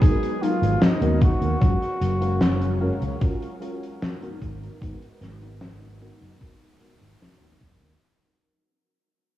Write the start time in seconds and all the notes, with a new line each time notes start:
Already playing: F#3 G#3 B3 D#4 G#4
0.01 G#3 B3 D#4 F#4 G#4 A#4, kick, closed hi-hat
0.23 closed hi-hat
0.41 F#3 G#3 B3 D#4 F4 A#4, closed hi-hat
0.62 G#1, closed hi-hat
0.81 D#4, snare, closed hi-hat
1.01 D#2 G#3 B3 D#4 F#4 A#4, closed hi-hat
1.21 F#4, kick, closed hi-hat
1.42 D#2, closed hi-hat
1.61 F#1 F#3 G#3 C#4 F4 F#4 G#4 A#4 F5, kick, closed hi-hat
1.82 closed hi-hat
2.01 F#1, closed hi-hat
2.21 G#3 C#4 F#4 A#4 F5, closed hi-hat
2.41 snare, closed hi-hat
2.62 closed hi-hat
2.80 G#3 C#4 F#4 A#4 F5
3.02 C#2, closed hi-hat
3.20 G#3 C#4 F4 F#4 A#4, kick, closed hi-hat
3.42 closed hi-hat
3.60 G#3 C#4 F4 F#4 A#4, closed hi-hat
3.83 closed hi-hat
4.02 snare, closed hi-hat
4.21 G#3 B3 D#4 F#4 A#4, closed hi-hat
4.41 G#1 G#3 B3 D#4 F#4, kick, closed hi-hat
4.63 closed hi-hat
4.81 G#1 G#3 B3 D#4 F#4 A#4, kick, closed hi-hat
5.02 closed hi-hat
5.21 G#1, snare, closed hi-hat
5.41 G#3 B3 D#4 F#4 A#4, closed hi-hat
5.61 snare, closed hi-hat
5.83 closed hi-hat
6.01 G#3 B3 D#4 F#4 A#4, closed hi-hat
6.21 F#1, closed hi-hat
6.41 G#3 B3 D#4 F#4 A#4, kick, closed hi-hat
6.62 closed hi-hat
6.80 G#3 B3 D#4 F#4 A#4, closed hi-hat
7.01 G#1, closed hi-hat
7.21 snare, closed hi-hat
7.41 D#2 G#3 B3 D#4 F#4 A#4, closed hi-hat
7.61 F#1, kick, closed hi-hat
7.81 D#2, closed hi-hat